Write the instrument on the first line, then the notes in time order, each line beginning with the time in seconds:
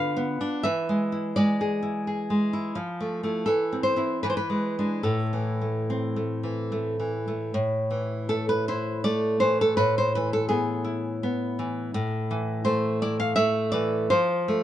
nylon-string guitar
Already playing: D3 F4 B4 F5
0.17 B3
0.41 D4
0.63 E3 E5
0.89 G#3
1.12 E4
1.36 G#3 D5
1.61 G#4
1.83 E4
2.07 G#4
2.30 G#3
2.53 E4
2.75 F3
3.00 A3
3.23 A3 E4
3.46 E3 A4
3.73 C4
3.83 C5
3.96 C4 E4
4.23 E3 B4
4.30 C5
4.37 B4
4.50 G#3
4.79 G#3 D4
5.03 A2 A4
5.33 E3
5.61 A3
5.90 C4
6.16 A3
6.43 E3
6.72 A3
7.00 E3
7.28 A3
7.54 A2
7.91 E3
8.29 A3 A4
8.49 B4
8.68 E4 C5
9.04 A3 D5
9.40 E3 C5
9.61 A4
9.77 A2 B4
9.98 C5
10.15 E3 B4
10.33 A4
10.49 B3 G#4
10.85 E4
11.23 B3
11.59 E3
11.94 A2
12.31 E3
12.65 A3 C5
13.02 E4 D5
13.20 F5
13.36 A3 E5
13.72 E3 D5
14.10 F3 C5
14.48 A3